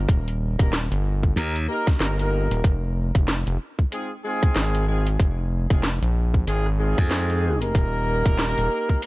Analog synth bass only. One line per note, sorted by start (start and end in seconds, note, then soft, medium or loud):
0.59 0.88 D#1 medium
0.91 1.34 G1 loud
2.00 2.48 G1 medium
2.50 2.62 D#1 loud
2.64 3.12 F1 loud
3.15 3.44 F1 loud
3.47 3.58 F1 loud
4.56 5.17 G#1 loud
5.19 5.67 F1 loud
5.70 5.99 F1 loud
6.02 6.45 A#1 loud
6.47 6.95 G#1 medium
7.75 8.23 D#1 loud
8.58 8.68 D#1 loud